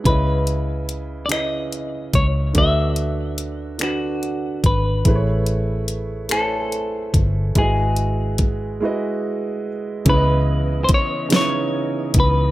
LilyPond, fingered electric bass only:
\new Staff \with { instrumentName = "Fingered electric bass" } { \clef bass \time 6/8 \key cis \minor \tempo 4. = 48 cis,2~ cis,8 cis,8 | d,2~ d,8 gis,,8 | a,,2~ a,,8 g,,8 | gis,,4. r4. |
cis,4 r4. cis,8 | }